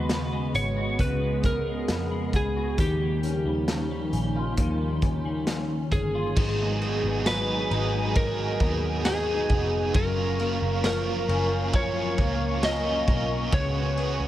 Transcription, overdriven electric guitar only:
6.36 G#2 D#3 F#3 B3 D#4 G#4
6.81 F#3 B3 D#4 G#4
7.25 F#3 B3 D#4 G#4
7.70 F#3 B3 D#4 G#4
8.15 G#2 D#3 F#3 B3 D#4 G#4
8.60 F#3 B3 D#4 G#4
9.04 F#3 B3 D#4 G#4
9.49 F#3 B3 D#4 G#4
9.94 F#3 C#4 F4 A#4
10.39 C#4 F4 A#4
10.83 F#3 C#4 F4 A#4
11.28 C#4 F4 A#4
11.73 F#3 C#4 F4 A#4
12.17 C#4 F4 A#4
12.62 F#3 C#4 F4 A#4
13.06 C#4 F4 A#4
13.52 C#3 G#3 B3 F#4 G#4
13.96 B3 F#4 G#4

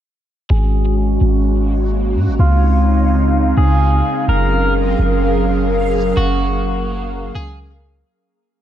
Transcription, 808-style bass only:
0.50 G#1
1.21 G#1
2.16 G#2
2.28 G#1
2.39 C#2
3.58 C#2
4.28 F#1
4.99 F#1
6.17 F#1
7.35 C#2

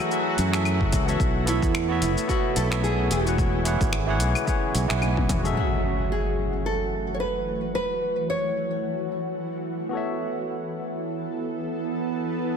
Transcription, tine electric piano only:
0.09 F#3 F#4 G#4 A4
0.13 E5
0.52 F#3 F#4 G#4 A4 E5
1.06 B3 F#4 A4 C#5
1.10 E5
1.46 B3 F#4 A4 C#5
1.50 E5
1.88 B3 F#4 A4 C#5 E5
2.27 B3 F#4 A4 C#5 E5
2.70 B3 F#4 A4 C#5 E5
3.25 E3 E4 G#4 C#5 F#5
3.64 E3 E4 G#4 C#5
3.68 F#5
4.06 E3 E4 G#4 C#5 F#5
4.45 E3 E4 G#4 C#5 F#5
4.88 E3 E4 G#4 C#5 F#5
5.43 F#3 F#4 G#4 A4 E5
5.53 F#3 F#4 G#5
5.58 A3 E5
9.89 B3 F#4 A4
9.95 C#5 E5

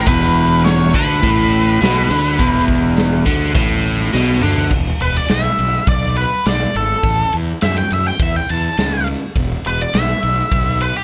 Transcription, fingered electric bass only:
0.07 E1
0.94 D2
1.23 A1
1.82 B1
2.11 D2
2.40 E1
3.26 D2
3.56 A1
4.14 B1
4.43 D2
4.71 E1
5.01 E1
5.30 B1
5.59 B1
5.87 B1
6.46 B1
6.75 G#1
7.03 A1
7.34 E2
7.63 F#2
7.92 F#2
8.20 E2
8.50 E2
8.78 C#2
9.36 E1
9.66 E1
9.94 B1
10.23 B1
10.52 B1

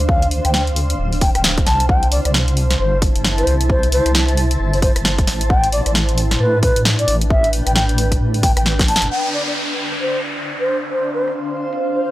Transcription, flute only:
0.09 F5
0.45 G5
0.54 G5
1.21 G5
1.35 G5
1.67 A5
1.89 G5
2.12 D5
2.25 D5
2.79 C5
3.38 C5
3.70 C5
3.92 C5
4.73 C5
4.82 C5
5.50 G5
5.73 D5
5.86 D5
6.40 B4
6.63 B4
6.99 D5
7.30 E5
7.67 G5
7.75 G5
8.43 G5
8.57 G5
8.88 A5
9.11 G5
9.34 D5
9.47 D5
10.01 C5
10.60 C5
10.91 C5
11.14 C5
11.95 C5
12.04 C5

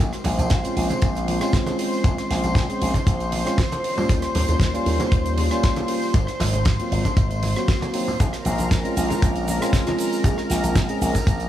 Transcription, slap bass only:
0.00 A#1
0.25 A#1
0.38 A#1
0.51 A#1
0.76 A#1
1.02 A#1
2.04 A#1
2.30 A#1
2.44 A#1
2.55 A#1
2.81 A#1
3.07 A#1
4.09 D#2
4.35 D#2
4.49 D#2
4.60 D#2
4.86 D#2
5.12 D#2
6.14 G#1
6.40 G#1
6.54 G#1
6.66 G#1
6.92 G#1
7.17 G#1
8.20 A#1
8.45 A#1
8.59 A#1
8.71 A#1
8.97 A#1
9.22 A#1
10.24 A#1
10.50 A#1
10.64 A#1
10.76 A#1
11.01 A#1
11.27 A#1

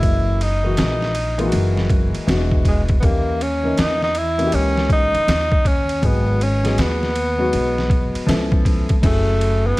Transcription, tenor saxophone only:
Already playing: E4
0.42 D#4
2.68 G#3
2.99 B3
3.05 A#3
3.43 C#4
3.80 D#4
4.03 D#4
4.17 E4
4.54 C#4
4.92 D#4
5.67 C#4
6.06 B3
6.43 C#4
6.81 B3
9.06 A3
9.67 B3

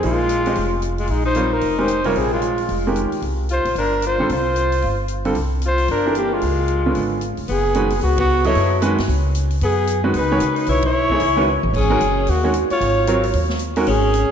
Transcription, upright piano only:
0.03 F3 A#3 D#4 G#4 C5
0.46 G#3 C#4 G4 C5 D#5
1.36 G3 C4 F4 A#4 C#5
1.78 D#3 G#3 C#4 G4 A#4
2.05 C3 G3 F4 A#4 C#5
2.87 D#3 G#3 C#4 G4 A#4
4.19 D3 G3 C4 F4 A4
5.25 D3 G3 C4 F4 A4
6.06 E3 D4 G4 A4 A#4
6.86 D3 G#3 B3 C#4 F4
7.75 D#3 G#3 C#4 F#4 B4
8.45 F#3 B3 E4 A4 D#5
8.82 D#3 G#3 C#4 F#4 B4
10.04 D#3 G#3 C#4 F#4 B4
10.31 D#3 G#3 C#4 F#4 C#5
11.11 E3 A3 D#4 G#4 C#5
11.36 D#3 G#3 C#4 F#4 B4
11.90 D#3 G#3 C#4 F#4 A#4
12.44 D#3 G#3 C#4 F#4 C#5
13.08 F#3 C4 F4 A#4 C#5
13.76 D#3 G#3 C#4 F#4 A#4

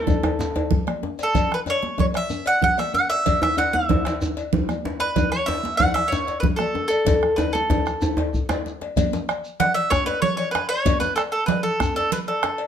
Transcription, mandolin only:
Already playing: A4
1.23 A4
1.54 B4
1.70 C#5
2.00 C#5
2.17 E5
2.47 F#5
2.64 F#5
2.79 E5
2.94 F#5
3.10 E5
3.43 E5
3.58 F#5
3.73 E5
5.00 B4
5.32 C#5
5.46 E5
5.77 F#5
5.94 E5
6.08 C#5
6.40 B4
6.56 A4
6.88 A4
7.36 B4
7.53 A4
9.60 F#5
9.74 E5
9.90 C#5
10.06 B4
10.22 C#5
10.37 C#5
10.51 B4
10.69 C#5
11.00 B4
11.16 A4
11.32 A4
11.46 B4
11.63 A4
11.96 A4
12.13 B4
12.28 A4

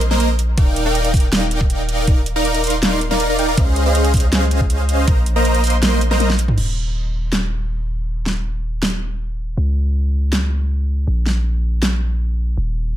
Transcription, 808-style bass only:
Already playing: A#1
0.58 D#1
3.58 C#2
5.08 A#1
6.58 D#1
9.57 C#2
11.07 A#1
12.57 D#1

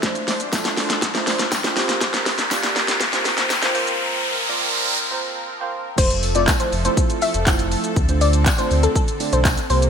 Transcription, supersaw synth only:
Already playing: F3
0.03 D4 C5
1.77 C4 A#4
3.75 F3
5.98 F3 A3 A4
7.97 D3 C4
9.70 C3 A#3

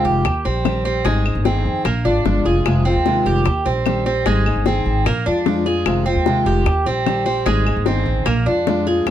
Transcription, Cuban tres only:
0.05 G4
0.45 C4
0.85 C4
1.05 G#3
1.45 C4
1.85 A#3
2.05 D4
2.45 G#4
2.85 C4
3.26 G4
3.66 C4
4.06 C4
4.26 G#3
4.66 C4
5.06 A#3
5.26 D4
5.66 G#4
6.06 C4
6.46 G4
6.86 C4
7.26 C4
7.46 G#3
7.86 C4
8.26 A#3
8.46 D4
8.87 G#4

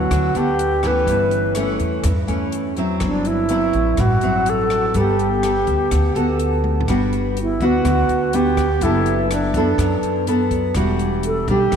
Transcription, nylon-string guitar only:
Already playing: F#3 B3 D4
0.11 D3
0.36 B3 D4
0.83 E3 A3 C#4
1.07 G2
1.56 E3 A3 C#4
2.04 G2
2.27 E3 A3 C#4
2.77 F#3 C4 E4
3.02 G2
3.50 F#3 C4 E4
3.99 G2
4.23 F#3 C4 E4
4.95 G3 B3 A4
5.44 B3 A4
5.91 D3
6.15 B3 F#4 A4
6.89 G3 B3 D4 F#4
7.62 B3 D4 F#4
7.85 D3
8.34 B3 D4
8.83 F#3 B3 D4 A4
9.56 B3 D4 A4
9.80 F#3
10.28 B3 D4 A4
10.76 E3 G3 D4 F#4
11.50 G3 D4

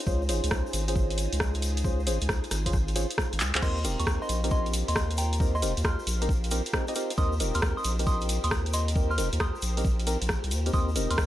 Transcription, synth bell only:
3.62 D#5 C6
4.00 A#5 C#6
4.22 D#5 C6
4.51 D#5 C6
4.88 D#5 C6
5.18 G5 A#5
5.55 D#5 C6
5.85 C6 F6
7.18 C6 D#6
7.55 C6 F6
7.77 C6 D#6
8.07 C6 D#6
8.44 C6 D#6
8.74 D#5 C6
9.11 C6 F6
9.40 C6 D#6
10.74 C6 D#6
11.11 C6 F6

